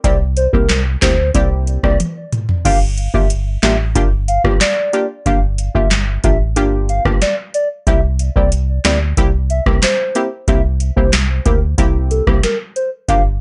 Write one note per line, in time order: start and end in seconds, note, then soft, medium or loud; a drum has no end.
0.04 0.48 C2 loud
0.04 0.17 A#3 loud
0.04 0.17 C4 medium
0.04 0.17 E4 medium
0.04 0.17 G4 loud
0.04 0.18 D5 loud
0.04 kick loud
0.04 closed hi-hat medium
0.37 0.51 C5 medium
0.37 closed hi-hat medium
0.53 0.97 C2 loud
0.53 0.66 A#3 medium
0.53 0.66 C4 medium
0.53 0.66 E4 medium
0.53 0.66 G4 medium
0.53 0.81 A#4 medium
0.53 kick medium
0.69 snare loud
0.69 clap medium
0.69 closed hi-hat medium
1.02 1.31 D2 medium
1.02 1.15 A#3 medium
1.02 1.15 C4 medium
1.02 1.15 E4 medium
1.02 1.15 G4 medium
1.02 1.30 C5 medium
1.02 kick loud
1.02 snare loud
1.02 clap medium
1.02 closed hi-hat medium
1.34 1.78 C2 loud
1.34 1.79 A#3 medium
1.34 1.80 C4 medium
1.34 1.80 E4 medium
1.34 1.80 G4 loud
1.34 1.49 D5 medium
1.34 kick medium
1.34 closed hi-hat medium
1.67 closed hi-hat soft
1.83 1.98 C2 medium
1.83 1.96 A#3 medium
1.83 1.96 C4 medium
1.83 1.96 E4 medium
1.83 1.97 G4 medium
1.83 1.98 D5 medium
1.83 kick medium
1.83 cross-stick loud
2.00 closed hi-hat medium
2.00 high tom medium
2.33 closed hi-hat soft
2.33 mid tom medium
2.49 floor tom medium
2.65 3.09 G1 loud
2.65 2.78 A#3 loud
2.65 2.78 D4 medium
2.65 2.78 F4 medium
2.65 2.78 G4 loud
2.65 2.79 F5 loud
2.65 kick loud
2.65 closed hi-hat medium
2.65 crash loud
2.98 closed hi-hat medium
3.14 3.58 G1 loud
3.14 3.27 A#3 medium
3.14 3.27 D4 medium
3.14 3.27 F4 medium
3.14 3.27 G4 medium
3.14 3.28 E5 medium
3.14 kick medium
3.30 closed hi-hat medium
3.63 3.97 A1 medium
3.63 3.76 A#3 medium
3.63 3.76 D4 medium
3.63 3.76 F4 medium
3.63 3.76 G4 medium
3.63 3.77 E5 medium
3.63 snare loud
3.63 clap medium
3.63 closed hi-hat medium
3.95 4.39 G1 loud
3.95 4.08 A#3 loud
3.95 4.08 D4 medium
3.95 4.08 F4 medium
3.95 4.09 G4 loud
3.95 kick medium
3.95 closed hi-hat medium
4.28 4.42 F5 medium
4.28 closed hi-hat soft
4.44 4.59 G1 medium
4.44 4.57 A#3 medium
4.44 4.57 D4 medium
4.44 4.57 F4 medium
4.44 4.57 G4 medium
4.44 kick loud
4.44 cross-stick loud
4.61 5.07 D5 medium
4.61 snare loud
4.61 clap medium
4.61 closed hi-hat medium
4.93 5.06 A#3 medium
4.93 5.06 D4 medium
4.93 5.06 F4 medium
4.93 5.06 G4 medium
4.93 closed hi-hat soft
5.26 5.69 G1 loud
5.26 5.39 A#3 loud
5.26 5.39 D4 medium
5.26 5.39 F4 medium
5.26 5.39 G4 loud
5.26 5.40 F5 loud
5.26 kick loud
5.26 closed hi-hat medium
5.58 closed hi-hat medium
5.74 6.18 G1 loud
5.74 5.88 A#3 medium
5.74 5.88 D4 medium
5.74 5.88 F4 medium
5.74 5.88 G4 medium
5.74 5.89 E5 medium
5.74 kick medium
5.91 snare loud
5.91 clap medium
5.91 closed hi-hat medium
6.24 6.58 A1 medium
6.24 6.37 A#3 medium
6.24 6.37 D4 medium
6.24 6.37 F4 medium
6.24 6.37 G4 medium
6.24 6.38 E5 medium
6.24 kick loud
6.24 closed hi-hat medium
6.56 7.00 G1 loud
6.56 7.01 A#3 loud
6.56 7.01 D4 medium
6.56 7.02 F4 medium
6.56 7.02 G4 loud
6.56 closed hi-hat medium
6.89 7.03 F5 medium
6.89 closed hi-hat soft
7.05 7.20 G1 loud
7.05 7.18 A#3 medium
7.05 7.18 D4 medium
7.05 7.18 F4 medium
7.05 7.18 G4 medium
7.05 kick medium
7.05 cross-stick loud
7.22 7.36 D5 medium
7.22 snare medium
7.22 closed hi-hat medium
7.54 7.68 D5 medium
7.54 closed hi-hat soft
7.87 8.30 C2 loud
7.87 8.00 A#3 medium
7.87 8.00 C4 medium
7.87 8.00 E4 medium
7.87 8.00 G4 loud
7.87 8.01 E5 loud
7.87 kick loud
7.87 closed hi-hat medium
8.19 closed hi-hat medium
8.36 8.79 C2 loud
8.36 8.49 A#3 medium
8.36 8.49 C4 medium
8.36 8.49 E4 medium
8.36 8.49 G4 medium
8.36 8.50 D5 medium
8.36 kick medium
8.52 closed hi-hat medium
8.85 9.14 D2 medium
8.85 8.97 A#3 medium
8.85 8.98 C4 medium
8.85 8.98 E4 medium
8.85 8.98 G4 medium
8.85 8.99 D5 medium
8.85 snare loud
8.85 clap medium
8.85 closed hi-hat medium
9.17 9.61 C2 loud
9.17 9.30 A#3 loud
9.17 9.30 C4 medium
9.17 9.30 E4 medium
9.17 9.30 G4 loud
9.17 kick loud
9.17 closed hi-hat medium
9.50 9.64 E5 medium
9.50 closed hi-hat medium
9.66 9.81 C2 medium
9.66 9.79 A#3 medium
9.66 9.79 C4 medium
9.66 9.79 E4 medium
9.66 9.79 G4 medium
9.66 kick loud
9.66 cross-stick loud
9.82 10.29 C5 medium
9.82 snare loud
9.82 clap loud
9.82 closed hi-hat medium
10.15 10.28 A#3 medium
10.15 10.28 C4 medium
10.15 10.28 E4 medium
10.15 10.28 G4 medium
10.15 closed hi-hat soft
10.48 10.91 C2 loud
10.48 10.61 A#3 loud
10.48 10.61 C4 medium
10.48 10.61 E4 medium
10.48 10.61 G4 loud
10.48 10.62 E5 loud
10.48 kick loud
10.48 closed hi-hat medium
10.80 closed hi-hat medium
10.96 11.40 C2 loud
10.96 11.09 A#3 medium
10.96 11.09 C4 medium
10.96 11.10 E4 medium
10.96 11.10 G4 medium
10.96 11.11 C5 medium
10.96 kick medium
11.13 snare loud
11.13 clap medium
11.13 closed hi-hat medium
11.45 11.75 D2 medium
11.45 11.58 A#3 medium
11.45 11.58 C4 medium
11.45 11.58 E4 medium
11.45 11.59 G4 medium
11.45 11.60 A#4 medium
11.45 kick medium
11.45 closed hi-hat medium
11.78 12.22 C2 loud
11.78 12.23 A#3 loud
11.78 12.23 C4 medium
11.78 12.23 E4 medium
11.78 12.23 G4 loud
11.78 kick medium
11.78 closed hi-hat medium
12.11 12.25 A4 medium
12.11 closed hi-hat soft
12.27 12.42 C2 medium
12.27 12.40 A#3 medium
12.27 12.40 C4 medium
12.27 12.40 E4 medium
12.27 12.40 G4 medium
12.27 kick loud
12.27 cross-stick loud
12.43 12.58 A#4 medium
12.43 snare medium
12.43 closed hi-hat medium
12.76 12.90 C5 medium
12.76 closed hi-hat soft
13.08 13.41 G1 loud
13.08 13.21 A#3 loud
13.08 13.21 D4 medium
13.08 13.21 F4 medium
13.08 13.22 G4 loud
13.08 13.23 F5 loud
13.08 kick loud
13.08 closed hi-hat medium